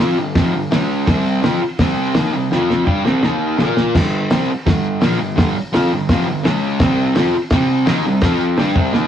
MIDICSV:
0, 0, Header, 1, 4, 480
1, 0, Start_track
1, 0, Tempo, 357782
1, 1445, Time_signature, 4, 2, 24, 8
1, 12174, End_track
2, 0, Start_track
2, 0, Title_t, "Distorted electric guitar"
2, 0, Program_c, 0, 30
2, 0, Note_on_c, 0, 53, 81
2, 0, Note_on_c, 0, 60, 83
2, 11, Note_on_c, 0, 65, 103
2, 226, Note_off_c, 0, 53, 0
2, 229, Note_off_c, 0, 60, 0
2, 234, Note_on_c, 0, 43, 66
2, 237, Note_off_c, 0, 65, 0
2, 241, Note_on_c, 0, 50, 80
2, 428, Note_off_c, 0, 43, 0
2, 432, Note_off_c, 0, 50, 0
2, 473, Note_on_c, 0, 41, 108
2, 476, Note_on_c, 0, 48, 114
2, 495, Note_on_c, 0, 53, 105
2, 709, Note_off_c, 0, 41, 0
2, 711, Note_off_c, 0, 48, 0
2, 718, Note_on_c, 0, 43, 72
2, 721, Note_off_c, 0, 53, 0
2, 722, Note_on_c, 0, 50, 69
2, 912, Note_off_c, 0, 43, 0
2, 914, Note_off_c, 0, 50, 0
2, 949, Note_on_c, 0, 49, 91
2, 960, Note_on_c, 0, 56, 90
2, 969, Note_on_c, 0, 61, 99
2, 1425, Note_off_c, 0, 49, 0
2, 1427, Note_off_c, 0, 56, 0
2, 1431, Note_on_c, 0, 48, 104
2, 1432, Note_on_c, 0, 55, 95
2, 1441, Note_off_c, 0, 61, 0
2, 1449, Note_on_c, 0, 60, 99
2, 1896, Note_off_c, 0, 48, 0
2, 1897, Note_off_c, 0, 60, 0
2, 1901, Note_on_c, 0, 53, 91
2, 1908, Note_off_c, 0, 55, 0
2, 1913, Note_on_c, 0, 60, 88
2, 1933, Note_on_c, 0, 65, 86
2, 2149, Note_off_c, 0, 53, 0
2, 2155, Note_off_c, 0, 60, 0
2, 2165, Note_off_c, 0, 65, 0
2, 2404, Note_on_c, 0, 48, 95
2, 2416, Note_on_c, 0, 55, 109
2, 2434, Note_on_c, 0, 60, 123
2, 2882, Note_off_c, 0, 48, 0
2, 2887, Note_off_c, 0, 55, 0
2, 2888, Note_on_c, 0, 51, 78
2, 2892, Note_on_c, 0, 58, 91
2, 2898, Note_off_c, 0, 60, 0
2, 2910, Note_on_c, 0, 63, 99
2, 3119, Note_off_c, 0, 58, 0
2, 3122, Note_off_c, 0, 51, 0
2, 3125, Note_on_c, 0, 55, 76
2, 3127, Note_on_c, 0, 48, 65
2, 3136, Note_off_c, 0, 63, 0
2, 3323, Note_off_c, 0, 55, 0
2, 3324, Note_off_c, 0, 48, 0
2, 3364, Note_on_c, 0, 53, 91
2, 3386, Note_on_c, 0, 60, 87
2, 3397, Note_on_c, 0, 65, 111
2, 3830, Note_off_c, 0, 60, 0
2, 3835, Note_on_c, 0, 55, 89
2, 3846, Note_off_c, 0, 53, 0
2, 3846, Note_off_c, 0, 65, 0
2, 3851, Note_on_c, 0, 62, 94
2, 3851, Note_on_c, 0, 67, 98
2, 4081, Note_off_c, 0, 55, 0
2, 4082, Note_on_c, 0, 48, 90
2, 4089, Note_off_c, 0, 62, 0
2, 4089, Note_off_c, 0, 67, 0
2, 4102, Note_on_c, 0, 55, 114
2, 4112, Note_on_c, 0, 60, 109
2, 4325, Note_off_c, 0, 48, 0
2, 4333, Note_on_c, 0, 51, 91
2, 4334, Note_off_c, 0, 55, 0
2, 4340, Note_off_c, 0, 60, 0
2, 4340, Note_on_c, 0, 58, 106
2, 4351, Note_on_c, 0, 63, 109
2, 4790, Note_off_c, 0, 58, 0
2, 4806, Note_on_c, 0, 58, 83
2, 4811, Note_off_c, 0, 51, 0
2, 4821, Note_off_c, 0, 63, 0
2, 4821, Note_on_c, 0, 65, 96
2, 4824, Note_on_c, 0, 70, 97
2, 5288, Note_off_c, 0, 58, 0
2, 5294, Note_on_c, 0, 43, 95
2, 5296, Note_off_c, 0, 65, 0
2, 5297, Note_off_c, 0, 70, 0
2, 5309, Note_on_c, 0, 50, 104
2, 5313, Note_on_c, 0, 55, 97
2, 5773, Note_off_c, 0, 43, 0
2, 5775, Note_off_c, 0, 50, 0
2, 5779, Note_off_c, 0, 55, 0
2, 5780, Note_on_c, 0, 48, 93
2, 5795, Note_on_c, 0, 55, 95
2, 5815, Note_on_c, 0, 60, 92
2, 6015, Note_off_c, 0, 48, 0
2, 6023, Note_off_c, 0, 55, 0
2, 6033, Note_off_c, 0, 60, 0
2, 6253, Note_on_c, 0, 43, 106
2, 6265, Note_on_c, 0, 50, 108
2, 6275, Note_on_c, 0, 55, 109
2, 6722, Note_off_c, 0, 50, 0
2, 6727, Note_on_c, 0, 46, 88
2, 6732, Note_off_c, 0, 43, 0
2, 6733, Note_off_c, 0, 55, 0
2, 6739, Note_on_c, 0, 53, 88
2, 6747, Note_on_c, 0, 58, 105
2, 6961, Note_off_c, 0, 46, 0
2, 6966, Note_on_c, 0, 43, 72
2, 6967, Note_on_c, 0, 50, 81
2, 6974, Note_off_c, 0, 53, 0
2, 6978, Note_off_c, 0, 58, 0
2, 7166, Note_off_c, 0, 43, 0
2, 7167, Note_off_c, 0, 50, 0
2, 7191, Note_on_c, 0, 43, 87
2, 7209, Note_on_c, 0, 50, 96
2, 7220, Note_on_c, 0, 55, 102
2, 7440, Note_off_c, 0, 43, 0
2, 7448, Note_off_c, 0, 50, 0
2, 7454, Note_off_c, 0, 55, 0
2, 7682, Note_on_c, 0, 53, 83
2, 7695, Note_on_c, 0, 60, 82
2, 7698, Note_on_c, 0, 65, 103
2, 7924, Note_off_c, 0, 53, 0
2, 7931, Note_off_c, 0, 60, 0
2, 7932, Note_off_c, 0, 65, 0
2, 7952, Note_on_c, 0, 43, 66
2, 7959, Note_on_c, 0, 50, 84
2, 8138, Note_off_c, 0, 43, 0
2, 8142, Note_off_c, 0, 50, 0
2, 8181, Note_on_c, 0, 41, 109
2, 8192, Note_on_c, 0, 48, 102
2, 8208, Note_on_c, 0, 53, 115
2, 8412, Note_off_c, 0, 41, 0
2, 8418, Note_off_c, 0, 48, 0
2, 8426, Note_off_c, 0, 53, 0
2, 8429, Note_on_c, 0, 43, 70
2, 8434, Note_on_c, 0, 50, 72
2, 8615, Note_off_c, 0, 43, 0
2, 8618, Note_off_c, 0, 50, 0
2, 8643, Note_on_c, 0, 49, 93
2, 8657, Note_on_c, 0, 56, 99
2, 8668, Note_on_c, 0, 61, 97
2, 9120, Note_off_c, 0, 49, 0
2, 9126, Note_on_c, 0, 48, 89
2, 9128, Note_off_c, 0, 56, 0
2, 9133, Note_off_c, 0, 61, 0
2, 9136, Note_on_c, 0, 55, 96
2, 9148, Note_on_c, 0, 60, 101
2, 9595, Note_off_c, 0, 60, 0
2, 9597, Note_off_c, 0, 48, 0
2, 9602, Note_on_c, 0, 53, 90
2, 9605, Note_off_c, 0, 55, 0
2, 9611, Note_on_c, 0, 60, 75
2, 9628, Note_on_c, 0, 65, 102
2, 9838, Note_off_c, 0, 53, 0
2, 9843, Note_off_c, 0, 60, 0
2, 9851, Note_off_c, 0, 65, 0
2, 10093, Note_on_c, 0, 48, 106
2, 10109, Note_on_c, 0, 55, 117
2, 10119, Note_on_c, 0, 60, 120
2, 10542, Note_off_c, 0, 48, 0
2, 10547, Note_on_c, 0, 51, 102
2, 10563, Note_off_c, 0, 55, 0
2, 10568, Note_on_c, 0, 58, 93
2, 10573, Note_off_c, 0, 60, 0
2, 10579, Note_on_c, 0, 63, 113
2, 10787, Note_off_c, 0, 51, 0
2, 10797, Note_off_c, 0, 58, 0
2, 10803, Note_off_c, 0, 63, 0
2, 10809, Note_on_c, 0, 48, 66
2, 10826, Note_on_c, 0, 55, 75
2, 10996, Note_off_c, 0, 48, 0
2, 11005, Note_off_c, 0, 55, 0
2, 11031, Note_on_c, 0, 53, 94
2, 11044, Note_on_c, 0, 60, 101
2, 11062, Note_on_c, 0, 65, 106
2, 11504, Note_off_c, 0, 60, 0
2, 11505, Note_off_c, 0, 53, 0
2, 11509, Note_on_c, 0, 55, 82
2, 11520, Note_off_c, 0, 65, 0
2, 11526, Note_on_c, 0, 62, 84
2, 11528, Note_on_c, 0, 67, 91
2, 11744, Note_off_c, 0, 55, 0
2, 11752, Note_off_c, 0, 62, 0
2, 11753, Note_off_c, 0, 67, 0
2, 11760, Note_on_c, 0, 48, 103
2, 11769, Note_on_c, 0, 55, 106
2, 11774, Note_on_c, 0, 60, 120
2, 11973, Note_off_c, 0, 48, 0
2, 11978, Note_on_c, 0, 51, 96
2, 11988, Note_off_c, 0, 55, 0
2, 11991, Note_off_c, 0, 60, 0
2, 11994, Note_on_c, 0, 58, 107
2, 11996, Note_on_c, 0, 63, 112
2, 12174, Note_off_c, 0, 51, 0
2, 12174, Note_off_c, 0, 58, 0
2, 12174, Note_off_c, 0, 63, 0
2, 12174, End_track
3, 0, Start_track
3, 0, Title_t, "Muted distorted electric guitar strokes"
3, 2171, Note_on_c, 9, 29, 60
3, 2305, Note_off_c, 9, 29, 0
3, 6011, Note_on_c, 9, 29, 60
3, 6145, Note_off_c, 9, 29, 0
3, 7474, Note_on_c, 9, 29, 66
3, 7608, Note_off_c, 9, 29, 0
3, 9864, Note_on_c, 9, 29, 62
3, 9998, Note_off_c, 9, 29, 0
3, 12174, End_track
4, 0, Start_track
4, 0, Title_t, "Drums"
4, 473, Note_on_c, 9, 46, 69
4, 475, Note_on_c, 9, 36, 121
4, 480, Note_on_c, 9, 38, 127
4, 607, Note_off_c, 9, 46, 0
4, 609, Note_off_c, 9, 36, 0
4, 614, Note_off_c, 9, 38, 0
4, 960, Note_on_c, 9, 46, 78
4, 966, Note_on_c, 9, 38, 127
4, 1094, Note_off_c, 9, 46, 0
4, 1100, Note_off_c, 9, 38, 0
4, 1442, Note_on_c, 9, 36, 122
4, 1443, Note_on_c, 9, 46, 75
4, 1450, Note_on_c, 9, 38, 122
4, 1576, Note_off_c, 9, 36, 0
4, 1577, Note_off_c, 9, 46, 0
4, 1584, Note_off_c, 9, 38, 0
4, 1926, Note_on_c, 9, 46, 54
4, 1932, Note_on_c, 9, 38, 104
4, 2060, Note_off_c, 9, 46, 0
4, 2066, Note_off_c, 9, 38, 0
4, 2396, Note_on_c, 9, 46, 66
4, 2401, Note_on_c, 9, 36, 112
4, 2403, Note_on_c, 9, 38, 127
4, 2530, Note_off_c, 9, 46, 0
4, 2535, Note_off_c, 9, 36, 0
4, 2537, Note_off_c, 9, 38, 0
4, 2874, Note_on_c, 9, 46, 68
4, 2881, Note_on_c, 9, 38, 123
4, 3008, Note_off_c, 9, 46, 0
4, 3015, Note_off_c, 9, 38, 0
4, 3378, Note_on_c, 9, 38, 73
4, 3512, Note_off_c, 9, 38, 0
4, 3626, Note_on_c, 9, 38, 69
4, 3760, Note_off_c, 9, 38, 0
4, 3850, Note_on_c, 9, 36, 90
4, 3985, Note_off_c, 9, 36, 0
4, 4101, Note_on_c, 9, 38, 71
4, 4235, Note_off_c, 9, 38, 0
4, 4333, Note_on_c, 9, 38, 95
4, 4467, Note_off_c, 9, 38, 0
4, 4810, Note_on_c, 9, 38, 112
4, 4944, Note_off_c, 9, 38, 0
4, 5058, Note_on_c, 9, 38, 94
4, 5192, Note_off_c, 9, 38, 0
4, 5300, Note_on_c, 9, 36, 113
4, 5301, Note_on_c, 9, 49, 127
4, 5308, Note_on_c, 9, 38, 127
4, 5434, Note_off_c, 9, 36, 0
4, 5436, Note_off_c, 9, 49, 0
4, 5442, Note_off_c, 9, 38, 0
4, 5773, Note_on_c, 9, 46, 59
4, 5780, Note_on_c, 9, 38, 118
4, 5908, Note_off_c, 9, 46, 0
4, 5914, Note_off_c, 9, 38, 0
4, 6261, Note_on_c, 9, 36, 125
4, 6262, Note_on_c, 9, 46, 71
4, 6269, Note_on_c, 9, 38, 126
4, 6395, Note_off_c, 9, 36, 0
4, 6396, Note_off_c, 9, 46, 0
4, 6403, Note_off_c, 9, 38, 0
4, 6725, Note_on_c, 9, 46, 65
4, 6732, Note_on_c, 9, 38, 126
4, 6860, Note_off_c, 9, 46, 0
4, 6866, Note_off_c, 9, 38, 0
4, 7217, Note_on_c, 9, 46, 76
4, 7218, Note_on_c, 9, 36, 117
4, 7224, Note_on_c, 9, 38, 127
4, 7351, Note_off_c, 9, 46, 0
4, 7352, Note_off_c, 9, 36, 0
4, 7358, Note_off_c, 9, 38, 0
4, 7697, Note_on_c, 9, 46, 64
4, 7704, Note_on_c, 9, 38, 105
4, 7831, Note_off_c, 9, 46, 0
4, 7838, Note_off_c, 9, 38, 0
4, 8168, Note_on_c, 9, 46, 77
4, 8171, Note_on_c, 9, 36, 110
4, 8175, Note_on_c, 9, 38, 127
4, 8303, Note_off_c, 9, 46, 0
4, 8305, Note_off_c, 9, 36, 0
4, 8309, Note_off_c, 9, 38, 0
4, 8651, Note_on_c, 9, 46, 75
4, 8658, Note_on_c, 9, 38, 122
4, 8785, Note_off_c, 9, 46, 0
4, 8792, Note_off_c, 9, 38, 0
4, 9118, Note_on_c, 9, 46, 76
4, 9122, Note_on_c, 9, 36, 120
4, 9125, Note_on_c, 9, 38, 127
4, 9252, Note_off_c, 9, 46, 0
4, 9257, Note_off_c, 9, 36, 0
4, 9259, Note_off_c, 9, 38, 0
4, 9597, Note_on_c, 9, 46, 60
4, 9603, Note_on_c, 9, 38, 105
4, 9731, Note_off_c, 9, 46, 0
4, 9738, Note_off_c, 9, 38, 0
4, 10064, Note_on_c, 9, 46, 72
4, 10071, Note_on_c, 9, 38, 127
4, 10076, Note_on_c, 9, 36, 119
4, 10198, Note_off_c, 9, 46, 0
4, 10205, Note_off_c, 9, 38, 0
4, 10210, Note_off_c, 9, 36, 0
4, 10554, Note_on_c, 9, 46, 62
4, 10561, Note_on_c, 9, 38, 127
4, 10688, Note_off_c, 9, 46, 0
4, 10695, Note_off_c, 9, 38, 0
4, 11019, Note_on_c, 9, 46, 71
4, 11026, Note_on_c, 9, 38, 124
4, 11031, Note_on_c, 9, 36, 119
4, 11153, Note_off_c, 9, 46, 0
4, 11160, Note_off_c, 9, 38, 0
4, 11165, Note_off_c, 9, 36, 0
4, 11501, Note_on_c, 9, 46, 62
4, 11507, Note_on_c, 9, 38, 101
4, 11635, Note_off_c, 9, 46, 0
4, 11641, Note_off_c, 9, 38, 0
4, 11749, Note_on_c, 9, 36, 110
4, 11884, Note_off_c, 9, 36, 0
4, 11995, Note_on_c, 9, 38, 74
4, 12129, Note_off_c, 9, 38, 0
4, 12174, End_track
0, 0, End_of_file